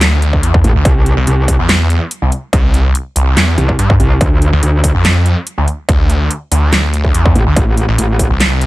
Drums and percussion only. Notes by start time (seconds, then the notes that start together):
0.01 snare, clap, closed hi-hat
0.22 closed hi-hat
0.33 kick
0.43 closed hi-hat
0.54 kick
0.64 closed hi-hat
0.85 kick, closed hi-hat
1.06 closed hi-hat
1.27 closed hi-hat
1.48 kick, open hi-hat
1.69 snare, clap, closed hi-hat
1.90 closed hi-hat
2.11 closed hi-hat
2.32 closed hi-hat
2.53 kick, closed hi-hat
2.74 closed hi-hat
2.95 closed hi-hat
3.16 open hi-hat
3.37 snare, clap, closed hi-hat
3.58 closed hi-hat
3.69 kick
3.79 closed hi-hat
3.90 kick
4.00 closed hi-hat
4.21 kick, closed hi-hat
4.42 closed hi-hat
4.63 closed hi-hat
4.84 kick, open hi-hat
5.05 snare, clap, closed hi-hat
5.26 closed hi-hat
5.47 closed hi-hat
5.68 closed hi-hat
5.89 kick, closed hi-hat
6.10 closed hi-hat
6.31 closed hi-hat
6.52 open hi-hat
6.73 snare, clap, closed hi-hat
6.94 closed hi-hat
7.05 kick
7.15 closed hi-hat
7.26 kick
7.35 closed hi-hat
7.56 kick, closed hi-hat
7.77 closed hi-hat
7.98 closed hi-hat
8.19 kick, open hi-hat
8.40 snare, clap, closed hi-hat
8.61 closed hi-hat